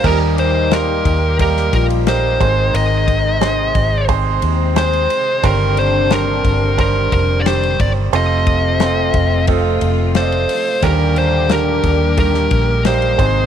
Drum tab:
CC |x---------------|----------------|----------------|----------------|
RD |--x-x-x-x-xxx-x-|x-x-x-x-x-x-xxx-|x-x-x-x-x-x-xxx-|x-x-x-x-x-x-xxx-|
HH |----------------|----------------|----------------|--------------o-|
SD |----o----o--o---|----o-------o---|----o-------o---|----o-------o---|
BD |o-----o-o-o---o-|--o---o-o-------|o-----o-o-o---o-|--o---o-o-------|

CC |----------------|
RD |x-x-x-x-x-x-xxx-|
HH |p---------------|
SD |----o----o--o---|
BD |o-----o-o-o---o-|